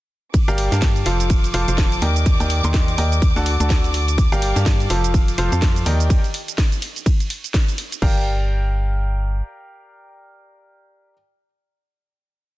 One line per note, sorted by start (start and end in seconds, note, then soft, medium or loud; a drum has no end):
0.34 6.11 D6 medium
0.34 kick loud
0.34 closed hi-hat medium
0.34 ride medium
0.34 shaker medium
0.48 0.69 G1 loud
0.48 0.69 G3 loud
0.48 0.69 G4 medium
0.48 0.69 A#4 medium
0.48 0.69 D5 medium
0.48 0.69 F5 medium
0.48 0.69 G5 loud
0.48 closed hi-hat soft
0.48 shaker soft
0.58 open hi-hat loud
0.72 1.04 G2 medium
0.72 1.04 G3 medium
0.72 1.04 G4 medium
0.72 1.04 A#4 medium
0.72 1.04 D5 medium
0.72 1.04 F5 medium
0.72 1.04 A5 medium
0.72 snare soft
0.72 closed hi-hat soft
0.72 shaker medium
0.82 kick loud
0.82 snare loud
0.82 closed hi-hat medium
0.82 ride medium
0.82 shaker medium
0.96 closed hi-hat soft
0.96 shaker soft
1.06 1.52 F1 loud
1.06 1.52 F3 medium
1.06 1.52 F4 medium
1.06 1.52 A4 medium
1.06 1.52 C5 medium
1.06 1.52 F5 medium
1.06 1.52 A5 medium
1.06 open hi-hat loud
1.20 closed hi-hat soft
1.20 shaker medium
1.30 kick loud
1.30 closed hi-hat medium
1.30 ride medium
1.30 shaker medium
1.44 closed hi-hat soft
1.44 shaker soft
1.54 1.65 F1 loud
1.54 1.65 F3 medium
1.54 1.65 F4 medium
1.54 1.65 A4 medium
1.54 1.65 C5 medium
1.54 1.65 F5 medium
1.54 1.65 A5 loud
1.54 open hi-hat loud
1.68 2.00 F1 medium
1.68 2.00 F3 medium
1.68 2.00 F4 medium
1.68 2.00 A4 medium
1.68 2.00 C5 medium
1.68 2.00 F5 medium
1.68 2.00 A5 medium
1.68 closed hi-hat soft
1.68 shaker medium
1.78 kick loud
1.78 snare loud
1.78 closed hi-hat medium
1.78 ride medium
1.78 shaker medium
1.92 closed hi-hat soft
1.92 shaker soft
2.02 2.37 D#2 loud
2.02 2.37 D#3 medium
2.02 2.37 G4 medium
2.02 2.37 A#4 medium
2.02 2.37 D5 medium
2.02 2.37 D#5 medium
2.02 2.37 G5 medium
2.02 open hi-hat loud
2.16 closed hi-hat soft
2.16 shaker medium
2.26 kick loud
2.26 closed hi-hat medium
2.26 ride medium
2.26 shaker medium
2.40 2.61 D#2 loud
2.40 2.60 D#3 medium
2.40 2.60 G4 medium
2.40 2.60 A#4 medium
2.40 2.60 D5 medium
2.40 2.60 D#5 medium
2.40 2.60 G5 medium
2.40 closed hi-hat soft
2.40 shaker soft
2.50 open hi-hat loud
2.64 2.96 D#2 medium
2.64 2.96 D#3 medium
2.64 2.96 G4 medium
2.64 2.96 A#4 medium
2.64 2.96 D5 medium
2.64 2.96 D#5 medium
2.64 2.96 C6 loud
2.64 closed hi-hat soft
2.64 shaker medium
2.74 kick loud
2.74 snare loud
2.74 closed hi-hat medium
2.74 ride medium
2.74 shaker medium
2.88 closed hi-hat soft
2.88 shaker soft
2.98 3.33 D#2 loud
2.98 3.21 G4 medium
2.98 3.21 A#4 medium
2.98 3.21 D5 medium
2.98 3.21 D#5 medium
2.98 3.21 G5 medium
2.98 open hi-hat loud
3.12 closed hi-hat soft
3.12 shaker medium
3.22 kick loud
3.22 closed hi-hat medium
3.22 ride medium
3.22 shaker medium
3.36 3.57 D2 loud
3.36 3.51 D3 medium
3.36 3.51 F#4 medium
3.36 3.51 A4 medium
3.36 3.51 D5 medium
3.36 3.51 F#5 medium
3.36 3.51 A5 loud
3.36 closed hi-hat soft
3.36 shaker soft
3.46 open hi-hat loud
3.60 4.29 D2 medium
3.60 4.17 D3 medium
3.60 4.17 F#4 medium
3.60 4.17 A4 medium
3.60 4.17 D5 medium
3.60 4.17 F#5 medium
3.60 4.17 A5 medium
3.60 closed hi-hat soft
3.60 shaker medium
3.70 kick loud
3.70 snare loud
3.70 open hi-hat medium
3.70 ride medium
3.70 shaker medium
3.84 closed hi-hat soft
3.84 shaker soft
3.94 open hi-hat loud
4.08 closed hi-hat soft
4.08 shaker medium
4.18 kick loud
4.18 closed hi-hat medium
4.18 ride medium
4.18 shaker medium
4.32 4.53 G1 loud
4.32 4.53 G3 loud
4.32 4.53 G4 medium
4.32 4.53 A#4 medium
4.32 4.53 D5 medium
4.32 4.53 F5 medium
4.32 4.53 G5 loud
4.32 closed hi-hat soft
4.32 shaker soft
4.42 open hi-hat loud
4.56 4.88 G2 loud
4.56 4.88 G3 medium
4.56 4.88 G4 medium
4.56 4.88 A#4 medium
4.56 4.88 D5 medium
4.56 4.88 F5 medium
4.56 4.88 A5 medium
4.56 snare soft
4.56 closed hi-hat soft
4.56 shaker medium
4.66 kick loud
4.66 snare loud
4.66 closed hi-hat medium
4.66 ride medium
4.66 shaker medium
4.80 closed hi-hat soft
4.80 shaker soft
4.90 5.36 F1 medium
4.90 5.36 F3 medium
4.90 5.36 F4 medium
4.90 5.36 A4 medium
4.90 5.36 C5 medium
4.90 5.36 F5 medium
4.90 5.36 A5 medium
4.90 open hi-hat loud
5.04 closed hi-hat soft
5.04 shaker medium
5.14 kick loud
5.14 closed hi-hat medium
5.14 ride medium
5.14 shaker medium
5.28 closed hi-hat soft
5.28 shaker soft
5.38 5.49 F1 loud
5.38 5.49 F3 medium
5.38 5.49 F4 medium
5.38 5.49 A4 medium
5.38 5.49 C5 medium
5.38 5.49 F5 medium
5.38 5.49 A5 loud
5.38 open hi-hat loud
5.52 5.84 F2 medium
5.52 5.84 F3 medium
5.52 5.84 F4 medium
5.52 5.84 A4 medium
5.52 5.84 C5 medium
5.52 5.84 F5 medium
5.52 5.84 A5 medium
5.52 closed hi-hat soft
5.52 shaker medium
5.62 kick loud
5.62 snare loud
5.62 closed hi-hat medium
5.62 ride medium
5.62 shaker medium
5.76 closed hi-hat soft
5.76 shaker soft
5.86 6.18 D#2 loud
5.86 6.21 D#3 medium
5.86 6.21 G4 medium
5.86 6.21 A#4 medium
5.86 6.21 D5 medium
5.86 6.21 D#5 medium
5.86 6.21 G5 medium
5.86 open hi-hat loud
6.00 closed hi-hat soft
6.00 shaker medium
6.10 kick loud
6.10 closed hi-hat medium
6.10 ride medium
6.10 shaker medium
6.24 closed hi-hat soft
6.24 shaker soft
6.34 open hi-hat loud
6.48 closed hi-hat soft
6.48 shaker medium
6.58 kick loud
6.58 snare loud
6.58 closed hi-hat medium
6.58 ride medium
6.58 shaker medium
6.72 closed hi-hat soft
6.72 shaker soft
6.82 open hi-hat loud
6.96 closed hi-hat soft
6.96 shaker medium
7.06 kick loud
7.06 closed hi-hat medium
7.06 ride medium
7.06 shaker medium
7.20 closed hi-hat soft
7.20 shaker soft
7.30 open hi-hat loud
7.44 closed hi-hat soft
7.44 shaker medium
7.54 kick loud
7.54 snare loud
7.54 open hi-hat medium
7.54 ride medium
7.54 shaker medium
7.68 closed hi-hat soft
7.68 shaker soft
7.78 open hi-hat loud
7.92 closed hi-hat soft
7.92 shaker medium
8.02 9.42 G1 loud
8.02 11.13 G4 medium
8.02 11.13 A#4 medium
8.02 11.13 D5 medium
8.02 11.13 F5 medium
8.02 11.13 G5 loud
8.02 kick loud
8.02 crash loud